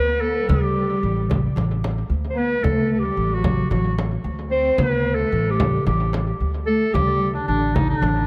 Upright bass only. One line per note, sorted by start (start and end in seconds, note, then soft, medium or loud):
0.00 0.40 D2 medium
0.49 0.94 D2 medium
1.03 1.48 A1 medium
1.56 2.01 A1 medium
2.10 2.55 D2 medium
2.63 3.08 D2 medium
3.17 3.62 A1 medium
3.71 4.16 A1 medium
4.24 4.69 D2 medium
4.78 5.23 D2 medium
5.32 5.77 A1 medium
5.86 6.31 A1 loud
6.40 6.85 D2 medium
6.94 7.38 D2 medium
7.48 7.92 A1 medium
8.02 8.27 A1 medium